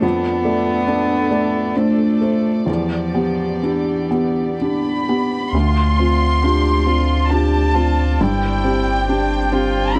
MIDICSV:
0, 0, Header, 1, 6, 480
1, 0, Start_track
1, 0, Tempo, 865801
1, 17, Time_signature, 3, 2, 24, 8
1, 977, Tempo, 914634
1, 1457, Tempo, 953895
1, 2897, Tempo, 884956
1, 5314, End_track
2, 0, Start_track
2, 0, Title_t, "Violin section"
2, 0, Program_c, 0, 48
2, 2426, Note_on_c, 0, 83, 53
2, 2875, Note_off_c, 0, 83, 0
2, 2891, Note_on_c, 0, 84, 75
2, 3851, Note_off_c, 0, 84, 0
2, 3852, Note_on_c, 0, 81, 66
2, 4339, Note_off_c, 0, 81, 0
2, 4346, Note_on_c, 0, 79, 70
2, 5300, Note_off_c, 0, 79, 0
2, 5314, End_track
3, 0, Start_track
3, 0, Title_t, "String section"
3, 0, Program_c, 1, 48
3, 0, Note_on_c, 1, 62, 44
3, 14, Note_on_c, 1, 69, 47
3, 15, Note_on_c, 1, 74, 47
3, 1450, Note_on_c, 1, 59, 35
3, 1451, Note_on_c, 1, 67, 34
3, 1455, Note_off_c, 1, 62, 0
3, 1456, Note_off_c, 1, 69, 0
3, 2875, Note_off_c, 1, 74, 0
3, 2888, Note_on_c, 1, 57, 40
3, 2889, Note_on_c, 1, 74, 41
3, 2890, Note_on_c, 1, 65, 40
3, 2893, Note_off_c, 1, 59, 0
3, 2893, Note_off_c, 1, 67, 0
3, 4314, Note_off_c, 1, 57, 0
3, 4315, Note_off_c, 1, 65, 0
3, 4339, Note_on_c, 1, 60, 45
3, 4341, Note_on_c, 1, 67, 44
3, 5314, Note_off_c, 1, 60, 0
3, 5314, Note_off_c, 1, 67, 0
3, 5314, Note_off_c, 1, 74, 0
3, 5314, End_track
4, 0, Start_track
4, 0, Title_t, "Cello"
4, 0, Program_c, 2, 42
4, 16, Note_on_c, 2, 59, 73
4, 982, Note_on_c, 2, 57, 67
4, 990, Note_off_c, 2, 59, 0
4, 1459, Note_off_c, 2, 57, 0
4, 1462, Note_on_c, 2, 53, 54
4, 1938, Note_on_c, 2, 52, 39
4, 1945, Note_off_c, 2, 53, 0
4, 2429, Note_off_c, 2, 52, 0
4, 2898, Note_on_c, 2, 65, 49
4, 3374, Note_on_c, 2, 67, 49
4, 3382, Note_off_c, 2, 65, 0
4, 3613, Note_on_c, 2, 65, 50
4, 3621, Note_off_c, 2, 67, 0
4, 3853, Note_on_c, 2, 67, 55
4, 3861, Note_off_c, 2, 65, 0
4, 4095, Note_on_c, 2, 65, 51
4, 4103, Note_off_c, 2, 67, 0
4, 4338, Note_on_c, 2, 64, 55
4, 4347, Note_off_c, 2, 65, 0
4, 4813, Note_off_c, 2, 64, 0
4, 4816, Note_on_c, 2, 62, 51
4, 5060, Note_on_c, 2, 65, 61
4, 5068, Note_off_c, 2, 62, 0
4, 5289, Note_on_c, 2, 64, 52
4, 5297, Note_off_c, 2, 65, 0
4, 5314, Note_off_c, 2, 64, 0
4, 5314, End_track
5, 0, Start_track
5, 0, Title_t, "Felt piano"
5, 0, Program_c, 3, 0
5, 0, Control_c, 3, 64, 127
5, 13, Note_on_c, 3, 41, 50
5, 27, Control_c, 3, 64, 0
5, 121, Control_c, 3, 64, 127
5, 250, Note_on_c, 3, 57, 34
5, 250, Note_on_c, 3, 74, 39
5, 467, Note_off_c, 3, 57, 0
5, 467, Note_off_c, 3, 74, 0
5, 482, Note_on_c, 3, 62, 33
5, 485, Note_on_c, 3, 74, 38
5, 705, Note_off_c, 3, 62, 0
5, 706, Note_off_c, 3, 74, 0
5, 724, Note_on_c, 3, 74, 36
5, 725, Note_on_c, 3, 57, 31
5, 951, Note_off_c, 3, 57, 0
5, 951, Note_off_c, 3, 74, 0
5, 975, Note_on_c, 3, 62, 29
5, 978, Note_on_c, 3, 72, 32
5, 1192, Note_off_c, 3, 62, 0
5, 1194, Note_off_c, 3, 72, 0
5, 1214, Note_on_c, 3, 57, 29
5, 1220, Note_on_c, 3, 72, 30
5, 1434, Note_off_c, 3, 41, 0
5, 1436, Note_off_c, 3, 57, 0
5, 1439, Note_off_c, 3, 72, 0
5, 1449, Note_on_c, 3, 40, 36
5, 1467, Control_c, 3, 64, 0
5, 1551, Control_c, 3, 64, 127
5, 1693, Note_on_c, 3, 59, 26
5, 1693, Note_on_c, 3, 67, 29
5, 1914, Note_off_c, 3, 59, 0
5, 1914, Note_off_c, 3, 67, 0
5, 1937, Note_on_c, 3, 62, 26
5, 1939, Note_on_c, 3, 67, 28
5, 2162, Note_off_c, 3, 62, 0
5, 2163, Note_off_c, 3, 67, 0
5, 2177, Note_on_c, 3, 59, 24
5, 2180, Note_on_c, 3, 67, 28
5, 2405, Note_off_c, 3, 59, 0
5, 2407, Note_off_c, 3, 67, 0
5, 2432, Note_on_c, 3, 62, 24
5, 2432, Note_on_c, 3, 67, 26
5, 2648, Note_off_c, 3, 62, 0
5, 2648, Note_off_c, 3, 67, 0
5, 2671, Note_on_c, 3, 67, 26
5, 2672, Note_on_c, 3, 59, 25
5, 2872, Note_off_c, 3, 40, 0
5, 2878, Note_off_c, 3, 67, 0
5, 2879, Note_off_c, 3, 59, 0
5, 2900, Note_on_c, 3, 38, 44
5, 2905, Control_c, 3, 64, 0
5, 3004, Control_c, 3, 64, 127
5, 3141, Note_on_c, 3, 60, 31
5, 3145, Note_on_c, 3, 65, 33
5, 3358, Note_off_c, 3, 60, 0
5, 3359, Note_off_c, 3, 65, 0
5, 3384, Note_on_c, 3, 62, 33
5, 3386, Note_on_c, 3, 65, 38
5, 3597, Note_off_c, 3, 62, 0
5, 3598, Note_off_c, 3, 65, 0
5, 3614, Note_on_c, 3, 60, 31
5, 3618, Note_on_c, 3, 65, 35
5, 3832, Note_off_c, 3, 60, 0
5, 3834, Note_off_c, 3, 65, 0
5, 3855, Note_on_c, 3, 62, 31
5, 3857, Note_on_c, 3, 65, 34
5, 4075, Note_off_c, 3, 62, 0
5, 4076, Note_off_c, 3, 65, 0
5, 4096, Note_on_c, 3, 60, 35
5, 4102, Note_on_c, 3, 65, 34
5, 4318, Note_off_c, 3, 60, 0
5, 4321, Note_off_c, 3, 38, 0
5, 4321, Note_off_c, 3, 65, 0
5, 4346, Note_on_c, 3, 43, 46
5, 4350, Control_c, 3, 64, 0
5, 4445, Control_c, 3, 64, 127
5, 4580, Note_on_c, 3, 60, 34
5, 4585, Note_on_c, 3, 67, 36
5, 4801, Note_off_c, 3, 60, 0
5, 4803, Note_off_c, 3, 67, 0
5, 4824, Note_on_c, 3, 67, 42
5, 4825, Note_on_c, 3, 62, 40
5, 5040, Note_off_c, 3, 67, 0
5, 5041, Note_off_c, 3, 62, 0
5, 5056, Note_on_c, 3, 60, 42
5, 5059, Note_on_c, 3, 67, 42
5, 5272, Note_off_c, 3, 60, 0
5, 5274, Note_off_c, 3, 67, 0
5, 5291, Note_on_c, 3, 62, 37
5, 5294, Note_on_c, 3, 67, 40
5, 5314, Note_off_c, 3, 43, 0
5, 5314, Note_off_c, 3, 62, 0
5, 5314, Note_off_c, 3, 67, 0
5, 5314, End_track
6, 0, Start_track
6, 0, Title_t, "Sub bass"
6, 0, Program_c, 4, 38
6, 2891, Note_on_c, 4, 38, 59
6, 4338, Note_on_c, 4, 31, 56
6, 4346, Note_off_c, 4, 38, 0
6, 5314, Note_off_c, 4, 31, 0
6, 5314, End_track
0, 0, End_of_file